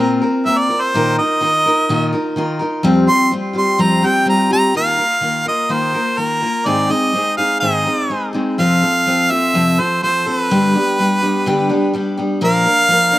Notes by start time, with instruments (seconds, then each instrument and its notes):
Already playing: steel-string acoustic guitar A#2 A#3, harmonica A#4
0.00 steel-string acoustic guitar C4 F4 A#4
0.22 steel-string acoustic guitar C4 F4 A#4
0.46 steel-string acoustic guitar A#3 C4 F4 A#4, harmonica E5
0.58 harmonica D5
0.69 steel-string acoustic guitar C4 F4 A#4
0.82 harmonica C5
0.94 steel-string acoustic guitar A#2 D#3 D#4 F4 A#4
1.18 steel-string acoustic guitar D#4 F4 A#4, harmonica D#5
1.41 steel-string acoustic guitar D#3 D#4 F4 A#4
1.66 steel-string acoustic guitar D#4 F4 A#4
1.89 steel-string acoustic guitar A#2 D#3 D#4 F4 A#4
2.13 steel-string acoustic guitar D#4 F4 A#4
2.36 steel-string acoustic guitar D#3 D#4 F4 A#4
2.59 steel-string acoustic guitar D#4 F4 A#4
2.83 steel-string acoustic guitar F2 F3 G3 C4 F4 G4
3.07 steel-string acoustic guitar C4 F4 G4, harmonica C6
3.31 steel-string acoustic guitar G3 C4 F4 G4
3.53 steel-string acoustic guitar G3 C4 F4 G4
3.58 harmonica C6
3.78 steel-string acoustic guitar F2 F3 G3 C4 F4 G4, harmonica A#5
4.02 steel-string acoustic guitar G3 C4 F4 G4, harmonica G5
4.26 steel-string acoustic guitar G3 C4 F4 G4, harmonica A#5
4.50 steel-string acoustic guitar G3 C4 F4 G4, harmonica A#5
4.74 steel-string acoustic guitar D#3 A#3 F4 A#4, harmonica F5
4.98 steel-string acoustic guitar A#3 F4 A#4
5.21 steel-string acoustic guitar D#3 A#3 F4 A#4
5.46 steel-string acoustic guitar A#3 F4 A#4, harmonica D#5
5.69 steel-string acoustic guitar D#3 A#3 F4 A#4, harmonica C5
5.93 steel-string acoustic guitar A#3 F4 A#4
6.18 steel-string acoustic guitar D#3 A#3 F4 A#4, harmonica A#4
6.41 steel-string acoustic guitar A#3 F4 A#4
6.65 steel-string acoustic guitar G#2 D#3 G#3 C4 D#4 G#4, harmonica D5
6.89 steel-string acoustic guitar G#3 C4 D#4 G#4, harmonica D#5
7.13 steel-string acoustic guitar G#3 C4 D#4 G#4
7.37 steel-string acoustic guitar G#3 C4 D#4 G#4, harmonica F5
7.60 steel-string acoustic guitar G#2 D#3 G#3 C4 D#4 G#4, harmonica D#5
7.85 steel-string acoustic guitar G#3 C4 D#4 G#4
8.10 steel-string acoustic guitar G#3 C4 D#4 G#4
8.33 steel-string acoustic guitar G#3 C4 D#4 G#4
8.58 steel-string acoustic guitar F2 C3 F3 C4 F4 A4, harmonica F5
8.82 steel-string acoustic guitar F3 C4 F4 A4
9.06 steel-string acoustic guitar F3 C4 F4 A4
9.31 steel-string acoustic guitar F3 C4 F4 A4, harmonica E5
9.54 steel-string acoustic guitar F2 C3 F3 C4 F4 A4
9.79 steel-string acoustic guitar F3 C4 F4 A4, harmonica C5
10.02 steel-string acoustic guitar F3 C4 F4 A4, harmonica C5
10.26 steel-string acoustic guitar F3 C4 F4 A4, harmonica B4
10.50 steel-string acoustic guitar G2 D3 G3 B3 D4 G4
10.75 steel-string acoustic guitar G3 B3 D4 G4
10.99 steel-string acoustic guitar G3 B3 D4 G4
11.22 steel-string acoustic guitar G3 B3 D4 G4
11.46 steel-string acoustic guitar G2 D3 G3 B3 D4 G4
11.69 steel-string acoustic guitar G3 B3 D4 G4
11.93 steel-string acoustic guitar G3 B3 D4 G4
12.17 steel-string acoustic guitar G3 B3 D4 G4
12.41 steel-string acoustic guitar A#2 F3 A#3 D4 A#4, harmonica F5
12.66 steel-string acoustic guitar A#3 D4 A#4
12.88 steel-string acoustic guitar F3 A#3 D4 A#4
13.11 steel-string acoustic guitar A#3 D4 A#4